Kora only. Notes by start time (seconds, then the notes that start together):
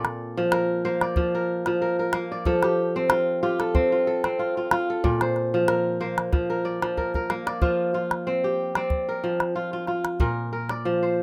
Already playing: A#2 C4 F4 A4 D5
0.37 F3
0.53 A#4
0.85 A#3 C5
1.02 D5
1.17 F3
1.35 A#4
1.67 F3
1.82 A#4
1.99 A#4
2.14 A#3
2.32 D5
2.46 F3 A4
2.64 G4
2.96 C4
3.11 F4
3.43 F4 G4
3.60 A4
3.75 C4
3.92 F4
4.07 A4
4.24 C4
4.39 F4
4.57 F4
4.72 F4
4.90 A4
5.04 A#2 D5
5.22 C5
5.54 F3
5.68 A#4
6.01 A#3 C5
6.32 F3
6.50 A#4
6.65 D5
6.82 F3
6.97 A#4
7.15 A#4
7.30 A#3
7.47 D5
7.62 F3 F4
7.94 F4
8.27 C4
8.44 G4
8.76 C4 D5
9.09 A#4
9.24 F3
9.56 F4
9.73 F4
9.88 F4
10.20 A#2 A#4
10.53 A#4
10.70 D5
10.85 F3
11.03 C5